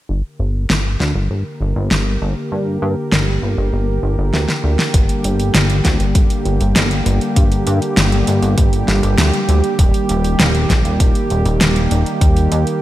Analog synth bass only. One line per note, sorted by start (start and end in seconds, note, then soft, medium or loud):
0.09 0.22 G1 medium
0.40 0.66 G1 medium
0.70 0.96 G1 medium
1.00 1.13 D2 loud
1.15 1.28 G1 medium
1.30 1.44 G1 medium
1.61 1.74 G1 medium
1.76 1.89 G1 loud
1.91 2.17 G1 medium
2.21 2.34 G1 loud
2.52 2.78 G2 medium
2.82 2.95 G2 loud
3.12 3.38 G1 medium
3.42 3.56 G1 medium
3.58 3.71 G1 medium
3.73 3.99 G1 medium
4.03 4.16 G1 medium
4.18 4.31 G1 medium
4.33 4.47 D2 medium
4.64 4.77 D2 medium
4.94 5.07 G1 loud
5.24 5.51 G1 loud
5.55 5.81 G1 medium
5.85 5.98 D2 loud
6.00 6.13 G1 medium
6.15 6.28 G1 medium
6.46 6.59 G1 medium
6.61 6.74 G1 loud
6.76 7.02 G1 medium
7.06 7.19 G1 loud
7.36 7.63 G2 medium
7.67 7.80 G2 loud
7.97 8.23 G1 medium
8.28 8.41 G1 medium
8.42 8.56 G1 medium
8.58 8.84 G1 medium
8.88 9.01 G1 loud
9.03 9.16 G1 medium
9.18 9.31 D2 medium
9.49 9.62 D2 medium
9.79 9.92 D#1 loud
10.09 10.35 D#1 loud
10.40 10.66 D#1 medium
10.70 10.83 A#1 loud
10.85 10.98 D#1 medium
11.00 11.13 D#1 medium
11.30 11.44 D#1 medium
11.46 11.59 D#1 loud
11.61 11.87 D#1 medium
11.91 12.04 D#1 loud
12.21 12.48 D#2 medium
12.52 12.65 D#2 loud